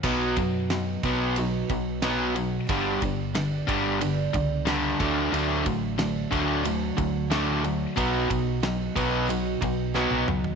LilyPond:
<<
  \new Staff \with { instrumentName = "Steel-string acoustic guitar" } { \time 4/4 \key b \mixolydian \tempo 4 = 91 <b, fis b dis' fis'>4 <fis b dis' fis'>4 <b, fis b dis' fis'>4 <fis b dis' fis'>4 | <g, d g b d' g'>8 <g b d' g'>8 <g b d' g'>4 <g, g b d' g'>4 <b d' g'>8 <d fis a d' fis'>8~ | <d fis a d' fis'>4 <fis a d' fis'>4 <d fis a d' fis'>4 <fis a d' fis'>4 | <b, fis b dis' fis'>4 <fis b dis' fis'>4 <b, fis b dis' fis'>4 <fis b dis' fis'>4 | }
  \new Staff \with { instrumentName = "Overdriven electric guitar" } { \clef bass \time 4/4 \key b \mixolydian <b, fis b>8 <b, fis>8 <b, fis>8 <b, fis b>8 <b, fis>8 <b, fis>8 <b, fis b>8 <b, fis>8 | <g, d g>8 <g, d>8 <g, d>8 <g, d g>8 <g, d>8 <g, d>8 <g, d g>8 <d fis a>8 | <d fis a>8 <d fis>8 <d fis>8 <d fis a>8 <d fis>8 <d fis>8 <d fis a>8 <d fis>8 | <b, fis b>8 <b, fis>8 <b, fis>8 <b, fis b>8 <b, fis>8 <b, fis>8 <b, fis b>8 <b, fis>8 | }
  \new Staff \with { instrumentName = "Overdriven electric guitar" } { \clef bass \time 4/4 \key b \mixolydian <b, fis b>8 <b, fis>8 <b, fis>8 <b, fis b>8 <b, fis>8 <b, fis>8 <b, fis b>8 <b, fis>8 | <g, d g>8 <g, d>8 <g, d>8 <g, d g>8 <g, d>8 <g, d>8 <g, d g>8 <d a d'>8 | <d a d'>8 <d a>8 <d a>8 <d a d'>8 <d a>8 <d a>8 <d a d'>8 <d a>8 | <b, fis b>8 <b, fis>8 <b, fis>8 <b, fis b>8 <b, fis>8 <b, fis>8 <b, fis b>8 <b, fis>8 | }
  \new Staff \with { instrumentName = "Fingered electric bass" } { \clef bass \time 4/4 \key b \mixolydian b,,8 fis,4 b,,4 b,,4. | g,,8 g,,4 g,,4 cis,4 d,8 | d,8 a,,4 d,4 d,4. | b,,8 b,,4 b,,4 b,,8. b,,16 cis,16 dis,16 | }
  \new DrumStaff \with { instrumentName = "Drums" } \drummode { \time 4/4 <cymc bd>8 <bd cymr>8 <cymr sn>8 <bd cymr>8 cymr8 <bd cymr>8 <cymr sn>8 cymr8 | <bd cymr>8 <bd cymr>8 <cymr sn>8 <bd cymr>8 cymr8 <bd cymr>8 <cymr sn>8 <bd cymr>8 | cymr8 <bd cymr>8 <cymr sn>8 <bd cymr>8 cymr8 <bd cymr>8 <cymr sn>8 cymr8 | <bd cymr>8 <bd cymr>8 <cymr sn>8 <bd cymr>8 cymr8 <bd cymr>8 sn16 tommh16 toml16 tomfh16 | }
>>